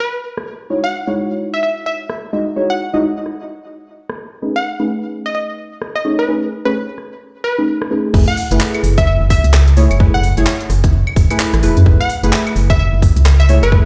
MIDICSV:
0, 0, Header, 1, 5, 480
1, 0, Start_track
1, 0, Tempo, 465116
1, 722, Time_signature, 4, 2, 24, 8
1, 14296, End_track
2, 0, Start_track
2, 0, Title_t, "Synth pluck"
2, 0, Program_c, 0, 84
2, 2, Note_on_c, 0, 71, 94
2, 386, Note_off_c, 0, 71, 0
2, 864, Note_on_c, 0, 78, 88
2, 1008, Note_off_c, 0, 78, 0
2, 1585, Note_on_c, 0, 76, 86
2, 1647, Note_off_c, 0, 76, 0
2, 1681, Note_on_c, 0, 76, 74
2, 1774, Note_off_c, 0, 76, 0
2, 1922, Note_on_c, 0, 76, 88
2, 2097, Note_off_c, 0, 76, 0
2, 2786, Note_on_c, 0, 78, 90
2, 3266, Note_off_c, 0, 78, 0
2, 4705, Note_on_c, 0, 78, 87
2, 4848, Note_off_c, 0, 78, 0
2, 5426, Note_on_c, 0, 75, 86
2, 5487, Note_off_c, 0, 75, 0
2, 5518, Note_on_c, 0, 75, 73
2, 5613, Note_off_c, 0, 75, 0
2, 6146, Note_on_c, 0, 75, 85
2, 6357, Note_off_c, 0, 75, 0
2, 6387, Note_on_c, 0, 71, 84
2, 6529, Note_off_c, 0, 71, 0
2, 6867, Note_on_c, 0, 71, 94
2, 7202, Note_off_c, 0, 71, 0
2, 7678, Note_on_c, 0, 71, 96
2, 8064, Note_off_c, 0, 71, 0
2, 8541, Note_on_c, 0, 78, 88
2, 8687, Note_off_c, 0, 78, 0
2, 9266, Note_on_c, 0, 76, 87
2, 9327, Note_off_c, 0, 76, 0
2, 9361, Note_on_c, 0, 76, 75
2, 9454, Note_off_c, 0, 76, 0
2, 9602, Note_on_c, 0, 76, 97
2, 9777, Note_off_c, 0, 76, 0
2, 10467, Note_on_c, 0, 78, 95
2, 10946, Note_off_c, 0, 78, 0
2, 12390, Note_on_c, 0, 78, 93
2, 12531, Note_off_c, 0, 78, 0
2, 13107, Note_on_c, 0, 76, 90
2, 13168, Note_off_c, 0, 76, 0
2, 13203, Note_on_c, 0, 76, 74
2, 13295, Note_off_c, 0, 76, 0
2, 13826, Note_on_c, 0, 76, 90
2, 14037, Note_off_c, 0, 76, 0
2, 14066, Note_on_c, 0, 71, 91
2, 14209, Note_off_c, 0, 71, 0
2, 14296, End_track
3, 0, Start_track
3, 0, Title_t, "Synth stab"
3, 0, Program_c, 1, 62
3, 723, Note_on_c, 1, 56, 70
3, 723, Note_on_c, 1, 63, 63
3, 723, Note_on_c, 1, 64, 62
3, 723, Note_on_c, 1, 66, 66
3, 723, Note_on_c, 1, 73, 80
3, 858, Note_off_c, 1, 63, 0
3, 858, Note_off_c, 1, 64, 0
3, 858, Note_off_c, 1, 66, 0
3, 859, Note_off_c, 1, 56, 0
3, 859, Note_off_c, 1, 73, 0
3, 1106, Note_on_c, 1, 56, 82
3, 1106, Note_on_c, 1, 64, 76
3, 1107, Note_on_c, 1, 63, 81
3, 1107, Note_on_c, 1, 66, 78
3, 1107, Note_on_c, 1, 73, 90
3, 2379, Note_off_c, 1, 56, 0
3, 2379, Note_off_c, 1, 63, 0
3, 2379, Note_off_c, 1, 64, 0
3, 2379, Note_off_c, 1, 66, 0
3, 2379, Note_off_c, 1, 73, 0
3, 2402, Note_on_c, 1, 56, 81
3, 2402, Note_on_c, 1, 64, 77
3, 2402, Note_on_c, 1, 75, 89
3, 2403, Note_on_c, 1, 63, 80
3, 2403, Note_on_c, 1, 66, 74
3, 2538, Note_off_c, 1, 56, 0
3, 2538, Note_off_c, 1, 64, 0
3, 2538, Note_off_c, 1, 66, 0
3, 2538, Note_off_c, 1, 75, 0
3, 2539, Note_off_c, 1, 63, 0
3, 2645, Note_on_c, 1, 56, 82
3, 2645, Note_on_c, 1, 63, 75
3, 2645, Note_on_c, 1, 64, 72
3, 2645, Note_on_c, 1, 66, 75
3, 2645, Note_on_c, 1, 73, 93
3, 2836, Note_off_c, 1, 56, 0
3, 2836, Note_off_c, 1, 63, 0
3, 2836, Note_off_c, 1, 64, 0
3, 2836, Note_off_c, 1, 66, 0
3, 2836, Note_off_c, 1, 73, 0
3, 3028, Note_on_c, 1, 63, 89
3, 3029, Note_on_c, 1, 56, 90
3, 3029, Note_on_c, 1, 64, 85
3, 3029, Note_on_c, 1, 66, 86
3, 3029, Note_on_c, 1, 75, 99
3, 3117, Note_off_c, 1, 63, 0
3, 3118, Note_off_c, 1, 56, 0
3, 3118, Note_off_c, 1, 64, 0
3, 3118, Note_off_c, 1, 66, 0
3, 3118, Note_off_c, 1, 75, 0
3, 4563, Note_on_c, 1, 57, 72
3, 4563, Note_on_c, 1, 61, 64
3, 4563, Note_on_c, 1, 63, 65
3, 4563, Note_on_c, 1, 68, 67
3, 4563, Note_on_c, 1, 71, 76
3, 4698, Note_off_c, 1, 61, 0
3, 4698, Note_off_c, 1, 63, 0
3, 4698, Note_off_c, 1, 68, 0
3, 4698, Note_off_c, 1, 71, 0
3, 4699, Note_off_c, 1, 57, 0
3, 4948, Note_on_c, 1, 61, 74
3, 4948, Note_on_c, 1, 71, 96
3, 4949, Note_on_c, 1, 57, 83
3, 4949, Note_on_c, 1, 63, 78
3, 4949, Note_on_c, 1, 68, 74
3, 6220, Note_off_c, 1, 57, 0
3, 6220, Note_off_c, 1, 61, 0
3, 6220, Note_off_c, 1, 63, 0
3, 6220, Note_off_c, 1, 68, 0
3, 6220, Note_off_c, 1, 71, 0
3, 6242, Note_on_c, 1, 57, 84
3, 6242, Note_on_c, 1, 61, 76
3, 6242, Note_on_c, 1, 63, 80
3, 6242, Note_on_c, 1, 68, 76
3, 6242, Note_on_c, 1, 73, 91
3, 6378, Note_off_c, 1, 57, 0
3, 6378, Note_off_c, 1, 61, 0
3, 6378, Note_off_c, 1, 63, 0
3, 6378, Note_off_c, 1, 68, 0
3, 6378, Note_off_c, 1, 73, 0
3, 6483, Note_on_c, 1, 57, 83
3, 6483, Note_on_c, 1, 61, 76
3, 6483, Note_on_c, 1, 63, 77
3, 6483, Note_on_c, 1, 71, 95
3, 6484, Note_on_c, 1, 68, 77
3, 6675, Note_off_c, 1, 57, 0
3, 6675, Note_off_c, 1, 61, 0
3, 6675, Note_off_c, 1, 63, 0
3, 6675, Note_off_c, 1, 71, 0
3, 6676, Note_off_c, 1, 68, 0
3, 6866, Note_on_c, 1, 57, 92
3, 6866, Note_on_c, 1, 61, 88
3, 6866, Note_on_c, 1, 63, 81
3, 6866, Note_on_c, 1, 73, 104
3, 6867, Note_on_c, 1, 68, 85
3, 6956, Note_off_c, 1, 57, 0
3, 6956, Note_off_c, 1, 73, 0
3, 6957, Note_off_c, 1, 61, 0
3, 6957, Note_off_c, 1, 63, 0
3, 6957, Note_off_c, 1, 68, 0
3, 7825, Note_on_c, 1, 61, 81
3, 7825, Note_on_c, 1, 68, 84
3, 7826, Note_on_c, 1, 57, 92
3, 7826, Note_on_c, 1, 63, 82
3, 7826, Note_on_c, 1, 71, 98
3, 8138, Note_off_c, 1, 61, 0
3, 8138, Note_off_c, 1, 68, 0
3, 8139, Note_off_c, 1, 57, 0
3, 8139, Note_off_c, 1, 63, 0
3, 8139, Note_off_c, 1, 71, 0
3, 8162, Note_on_c, 1, 61, 83
3, 8162, Note_on_c, 1, 63, 88
3, 8162, Note_on_c, 1, 68, 87
3, 8162, Note_on_c, 1, 71, 104
3, 8163, Note_on_c, 1, 57, 91
3, 8379, Note_off_c, 1, 61, 0
3, 8379, Note_off_c, 1, 63, 0
3, 8379, Note_off_c, 1, 68, 0
3, 8379, Note_off_c, 1, 71, 0
3, 8380, Note_off_c, 1, 57, 0
3, 8401, Note_on_c, 1, 71, 83
3, 8402, Note_on_c, 1, 57, 72
3, 8402, Note_on_c, 1, 64, 68
3, 8402, Note_on_c, 1, 68, 70
3, 8538, Note_off_c, 1, 57, 0
3, 8538, Note_off_c, 1, 64, 0
3, 8538, Note_off_c, 1, 68, 0
3, 8538, Note_off_c, 1, 71, 0
3, 8785, Note_on_c, 1, 57, 89
3, 8786, Note_on_c, 1, 64, 80
3, 8786, Note_on_c, 1, 68, 82
3, 8786, Note_on_c, 1, 71, 100
3, 10059, Note_off_c, 1, 57, 0
3, 10059, Note_off_c, 1, 64, 0
3, 10059, Note_off_c, 1, 68, 0
3, 10059, Note_off_c, 1, 71, 0
3, 10082, Note_on_c, 1, 57, 86
3, 10083, Note_on_c, 1, 64, 77
3, 10083, Note_on_c, 1, 68, 77
3, 10083, Note_on_c, 1, 73, 97
3, 10218, Note_off_c, 1, 57, 0
3, 10218, Note_off_c, 1, 64, 0
3, 10218, Note_off_c, 1, 68, 0
3, 10218, Note_off_c, 1, 73, 0
3, 10323, Note_on_c, 1, 57, 85
3, 10323, Note_on_c, 1, 64, 79
3, 10323, Note_on_c, 1, 68, 80
3, 10323, Note_on_c, 1, 71, 95
3, 10515, Note_off_c, 1, 64, 0
3, 10515, Note_off_c, 1, 68, 0
3, 10515, Note_off_c, 1, 71, 0
3, 10516, Note_off_c, 1, 57, 0
3, 10707, Note_on_c, 1, 68, 84
3, 10708, Note_on_c, 1, 57, 93
3, 10708, Note_on_c, 1, 64, 89
3, 10708, Note_on_c, 1, 73, 105
3, 10797, Note_off_c, 1, 57, 0
3, 10797, Note_off_c, 1, 64, 0
3, 10797, Note_off_c, 1, 68, 0
3, 10797, Note_off_c, 1, 73, 0
3, 11666, Note_on_c, 1, 57, 92
3, 11666, Note_on_c, 1, 64, 89
3, 11666, Note_on_c, 1, 71, 101
3, 11667, Note_on_c, 1, 68, 85
3, 11979, Note_off_c, 1, 57, 0
3, 11979, Note_off_c, 1, 64, 0
3, 11979, Note_off_c, 1, 68, 0
3, 11979, Note_off_c, 1, 71, 0
3, 12003, Note_on_c, 1, 57, 94
3, 12003, Note_on_c, 1, 64, 87
3, 12003, Note_on_c, 1, 68, 88
3, 12003, Note_on_c, 1, 71, 107
3, 12219, Note_off_c, 1, 64, 0
3, 12220, Note_off_c, 1, 57, 0
3, 12220, Note_off_c, 1, 68, 0
3, 12220, Note_off_c, 1, 71, 0
3, 12243, Note_on_c, 1, 57, 72
3, 12243, Note_on_c, 1, 64, 70
3, 12243, Note_on_c, 1, 68, 70
3, 12244, Note_on_c, 1, 71, 80
3, 12378, Note_off_c, 1, 57, 0
3, 12378, Note_off_c, 1, 64, 0
3, 12379, Note_off_c, 1, 68, 0
3, 12379, Note_off_c, 1, 71, 0
3, 12625, Note_on_c, 1, 57, 90
3, 12626, Note_on_c, 1, 64, 79
3, 12626, Note_on_c, 1, 68, 80
3, 12626, Note_on_c, 1, 71, 99
3, 13899, Note_off_c, 1, 57, 0
3, 13899, Note_off_c, 1, 64, 0
3, 13899, Note_off_c, 1, 68, 0
3, 13899, Note_off_c, 1, 71, 0
3, 13921, Note_on_c, 1, 68, 81
3, 13922, Note_on_c, 1, 57, 85
3, 13923, Note_on_c, 1, 64, 80
3, 13923, Note_on_c, 1, 73, 99
3, 14058, Note_off_c, 1, 57, 0
3, 14058, Note_off_c, 1, 64, 0
3, 14058, Note_off_c, 1, 68, 0
3, 14058, Note_off_c, 1, 73, 0
3, 14161, Note_on_c, 1, 64, 81
3, 14162, Note_on_c, 1, 57, 84
3, 14162, Note_on_c, 1, 68, 82
3, 14162, Note_on_c, 1, 71, 95
3, 14296, Note_off_c, 1, 57, 0
3, 14296, Note_off_c, 1, 64, 0
3, 14296, Note_off_c, 1, 68, 0
3, 14296, Note_off_c, 1, 71, 0
3, 14296, End_track
4, 0, Start_track
4, 0, Title_t, "FM bass"
4, 0, Program_c, 2, 39
4, 8399, Note_on_c, 2, 30, 100
4, 8521, Note_off_c, 2, 30, 0
4, 8783, Note_on_c, 2, 30, 82
4, 8865, Note_off_c, 2, 30, 0
4, 9118, Note_on_c, 2, 30, 95
4, 9467, Note_off_c, 2, 30, 0
4, 9502, Note_on_c, 2, 30, 83
4, 9698, Note_off_c, 2, 30, 0
4, 9743, Note_on_c, 2, 37, 84
4, 10187, Note_off_c, 2, 37, 0
4, 10224, Note_on_c, 2, 30, 81
4, 10668, Note_off_c, 2, 30, 0
4, 10703, Note_on_c, 2, 30, 80
4, 10785, Note_off_c, 2, 30, 0
4, 11040, Note_on_c, 2, 30, 89
4, 11388, Note_off_c, 2, 30, 0
4, 11521, Note_on_c, 2, 28, 103
4, 11642, Note_off_c, 2, 28, 0
4, 11905, Note_on_c, 2, 33, 96
4, 12000, Note_on_c, 2, 28, 101
4, 12016, Note_off_c, 2, 33, 0
4, 12122, Note_off_c, 2, 28, 0
4, 12145, Note_on_c, 2, 42, 80
4, 12226, Note_off_c, 2, 42, 0
4, 12240, Note_on_c, 2, 30, 105
4, 12362, Note_off_c, 2, 30, 0
4, 12625, Note_on_c, 2, 30, 82
4, 12706, Note_off_c, 2, 30, 0
4, 12961, Note_on_c, 2, 30, 97
4, 13308, Note_off_c, 2, 30, 0
4, 13345, Note_on_c, 2, 30, 84
4, 13539, Note_off_c, 2, 30, 0
4, 13585, Note_on_c, 2, 37, 90
4, 14028, Note_off_c, 2, 37, 0
4, 14066, Note_on_c, 2, 30, 84
4, 14296, Note_off_c, 2, 30, 0
4, 14296, End_track
5, 0, Start_track
5, 0, Title_t, "Drums"
5, 387, Note_on_c, 9, 37, 62
5, 490, Note_off_c, 9, 37, 0
5, 2162, Note_on_c, 9, 37, 62
5, 2266, Note_off_c, 9, 37, 0
5, 3363, Note_on_c, 9, 37, 27
5, 3467, Note_off_c, 9, 37, 0
5, 4226, Note_on_c, 9, 37, 58
5, 4329, Note_off_c, 9, 37, 0
5, 6002, Note_on_c, 9, 37, 61
5, 6105, Note_off_c, 9, 37, 0
5, 7203, Note_on_c, 9, 37, 29
5, 7306, Note_off_c, 9, 37, 0
5, 8066, Note_on_c, 9, 37, 65
5, 8169, Note_off_c, 9, 37, 0
5, 8400, Note_on_c, 9, 36, 121
5, 8401, Note_on_c, 9, 49, 104
5, 8503, Note_off_c, 9, 36, 0
5, 8504, Note_off_c, 9, 49, 0
5, 8641, Note_on_c, 9, 46, 110
5, 8744, Note_off_c, 9, 46, 0
5, 8785, Note_on_c, 9, 42, 68
5, 8881, Note_on_c, 9, 39, 114
5, 8888, Note_off_c, 9, 42, 0
5, 8984, Note_off_c, 9, 39, 0
5, 9025, Note_on_c, 9, 42, 39
5, 9025, Note_on_c, 9, 75, 62
5, 9120, Note_on_c, 9, 46, 111
5, 9128, Note_off_c, 9, 42, 0
5, 9128, Note_off_c, 9, 75, 0
5, 9223, Note_off_c, 9, 46, 0
5, 9264, Note_on_c, 9, 36, 109
5, 9264, Note_on_c, 9, 42, 66
5, 9367, Note_off_c, 9, 42, 0
5, 9368, Note_off_c, 9, 36, 0
5, 9600, Note_on_c, 9, 36, 100
5, 9601, Note_on_c, 9, 46, 106
5, 9703, Note_off_c, 9, 36, 0
5, 9704, Note_off_c, 9, 46, 0
5, 9745, Note_on_c, 9, 42, 67
5, 9841, Note_on_c, 9, 37, 74
5, 9841, Note_on_c, 9, 39, 121
5, 9849, Note_off_c, 9, 42, 0
5, 9944, Note_off_c, 9, 37, 0
5, 9944, Note_off_c, 9, 39, 0
5, 9986, Note_on_c, 9, 42, 51
5, 10080, Note_on_c, 9, 46, 115
5, 10089, Note_off_c, 9, 42, 0
5, 10184, Note_off_c, 9, 46, 0
5, 10225, Note_on_c, 9, 42, 64
5, 10225, Note_on_c, 9, 75, 55
5, 10321, Note_on_c, 9, 36, 124
5, 10328, Note_off_c, 9, 42, 0
5, 10328, Note_off_c, 9, 75, 0
5, 10424, Note_off_c, 9, 36, 0
5, 10560, Note_on_c, 9, 46, 104
5, 10663, Note_off_c, 9, 46, 0
5, 10705, Note_on_c, 9, 42, 66
5, 10800, Note_on_c, 9, 39, 120
5, 10808, Note_off_c, 9, 42, 0
5, 10903, Note_off_c, 9, 39, 0
5, 10945, Note_on_c, 9, 42, 38
5, 11041, Note_on_c, 9, 37, 31
5, 11041, Note_on_c, 9, 46, 107
5, 11048, Note_off_c, 9, 42, 0
5, 11144, Note_off_c, 9, 37, 0
5, 11144, Note_off_c, 9, 46, 0
5, 11185, Note_on_c, 9, 36, 115
5, 11185, Note_on_c, 9, 42, 69
5, 11288, Note_off_c, 9, 42, 0
5, 11289, Note_off_c, 9, 36, 0
5, 11425, Note_on_c, 9, 75, 72
5, 11521, Note_on_c, 9, 36, 106
5, 11521, Note_on_c, 9, 46, 102
5, 11528, Note_off_c, 9, 75, 0
5, 11624, Note_off_c, 9, 36, 0
5, 11624, Note_off_c, 9, 46, 0
5, 11667, Note_on_c, 9, 42, 66
5, 11667, Note_on_c, 9, 75, 76
5, 11761, Note_on_c, 9, 39, 124
5, 11770, Note_off_c, 9, 42, 0
5, 11770, Note_off_c, 9, 75, 0
5, 11864, Note_off_c, 9, 39, 0
5, 11906, Note_on_c, 9, 37, 68
5, 11906, Note_on_c, 9, 42, 52
5, 12001, Note_on_c, 9, 46, 113
5, 12010, Note_off_c, 9, 37, 0
5, 12010, Note_off_c, 9, 42, 0
5, 12104, Note_off_c, 9, 46, 0
5, 12145, Note_on_c, 9, 42, 60
5, 12241, Note_on_c, 9, 36, 120
5, 12248, Note_off_c, 9, 42, 0
5, 12344, Note_off_c, 9, 36, 0
5, 12482, Note_on_c, 9, 46, 105
5, 12585, Note_off_c, 9, 46, 0
5, 12626, Note_on_c, 9, 42, 64
5, 12722, Note_on_c, 9, 39, 125
5, 12730, Note_off_c, 9, 42, 0
5, 12825, Note_off_c, 9, 39, 0
5, 12866, Note_on_c, 9, 42, 38
5, 12866, Note_on_c, 9, 75, 60
5, 12962, Note_on_c, 9, 46, 105
5, 12969, Note_off_c, 9, 42, 0
5, 12969, Note_off_c, 9, 75, 0
5, 13066, Note_off_c, 9, 46, 0
5, 13105, Note_on_c, 9, 36, 111
5, 13106, Note_on_c, 9, 42, 64
5, 13208, Note_off_c, 9, 36, 0
5, 13209, Note_off_c, 9, 42, 0
5, 13440, Note_on_c, 9, 36, 107
5, 13442, Note_on_c, 9, 46, 97
5, 13544, Note_off_c, 9, 36, 0
5, 13545, Note_off_c, 9, 46, 0
5, 13587, Note_on_c, 9, 42, 68
5, 13682, Note_on_c, 9, 37, 71
5, 13682, Note_on_c, 9, 39, 127
5, 13690, Note_off_c, 9, 42, 0
5, 13785, Note_off_c, 9, 37, 0
5, 13785, Note_off_c, 9, 39, 0
5, 13826, Note_on_c, 9, 42, 50
5, 13921, Note_on_c, 9, 46, 109
5, 13929, Note_off_c, 9, 42, 0
5, 14024, Note_off_c, 9, 46, 0
5, 14065, Note_on_c, 9, 42, 58
5, 14065, Note_on_c, 9, 75, 56
5, 14160, Note_on_c, 9, 36, 124
5, 14169, Note_off_c, 9, 42, 0
5, 14169, Note_off_c, 9, 75, 0
5, 14264, Note_off_c, 9, 36, 0
5, 14296, End_track
0, 0, End_of_file